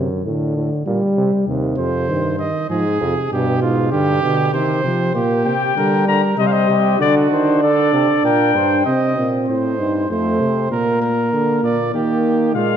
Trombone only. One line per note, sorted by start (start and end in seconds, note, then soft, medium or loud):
0.25 0.85 D3 medium
0.86 1.46 G3 medium
1.48 2.10 C3 medium
2.09 2.38 D#3 medium
2.39 2.69 D#3 medium
2.70 2.83 F3 medium
3.01 3.30 C3 medium
3.31 3.94 B2 medium
3.92 4.22 D3 medium
4.22 4.55 D3 medium
4.53 4.83 D#3 medium
4.84 5.13 F3 medium
5.14 5.54 A#3 medium
5.76 6.34 G3 medium
6.38 6.99 G3 medium
6.99 8.82 D4 medium
8.86 9.15 C4 medium
9.17 9.78 C4 medium
9.79 10.09 D#4 medium
10.10 10.70 A3 medium
10.72 11.77 A#3 medium
11.94 12.56 A#3 medium
12.55 12.77 G#3 medium